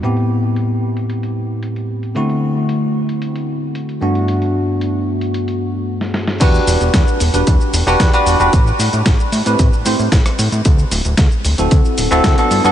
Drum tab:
CC |----------------|----------------|----------------|x---------------|
HH |xx--x--xxx--xx-x|xx--x--xxx--xx-x|xx--x--xxx------|x-oxx-oxx-o-xxox|
SH |----------------|----------------|----------------|xxxxxxxxxxxxxxxx|
SD |----------------|----------------|-------------ooo|----o-------o---|
BD |----------------|----------------|----------------|o---o---o---o---|

CC |----------------|----------------|
HH |x-oxx-oxx-o-xxox|x-oxx-oxx-o-xxox|
SH |xxxxxxxxxxxxxxxx|xxxxxxxxxxxxxxxx|
SD |----o-------or--|----o-------o---|
BD |o---o---o---o---|o---o---o---o---|